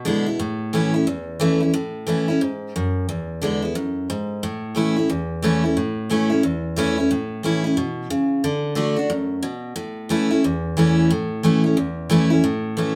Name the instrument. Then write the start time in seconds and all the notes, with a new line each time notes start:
steel-string acoustic guitar
Already playing: B2
0.05 D3 G#3 B3 E4
0.26 E4
0.39 A2
0.73 E3 A3 C#4 E4
0.94 C#4 E4
1.07 E2
1.40 E3 A3 C#4 E4
1.60 C#4 E4
1.74 A2
2.07 E3 A3 C#4 E4
2.28 C#4 E4
2.41 G#2
2.76 F#2
3.09 E2
3.42 D3 G#3 B3 E4
3.62 B3 E4
3.75 F#2
4.10 G#2
4.43 A2
4.75 E3 A3 C#4 E4
4.96 C#4 E4
5.10 E2
5.42 E3 A3 C#4 E4
5.64 C#4 E4
5.77 A2
6.10 E3 A3 C#4 E4
6.30 C#4 E4
6.43 E2
6.76 E3 A3 C#4 E4
6.98 C#4 E4
7.11 A2
7.43 E3 A3 C#4 E4
7.64 C#4 E4
7.77 B2
8.10 C#3
8.44 D3
8.75 D3 A3 D4 F#4
8.96 D4 F#4
9.10 F#2
9.43 B2
9.76 A2
10.09 E3 A3 C#4 E4
10.31 C#4 E4
10.44 E2
10.77 E3 A3 C#4 E4
11.11 A2
11.43 E3 A3 C#4 E4
11.64 C#4 E4
11.77 E2
12.10 E3 A3 C#4 E4
12.30 C#4 E4
12.44 A2
12.77 E3 A3 C#4 E4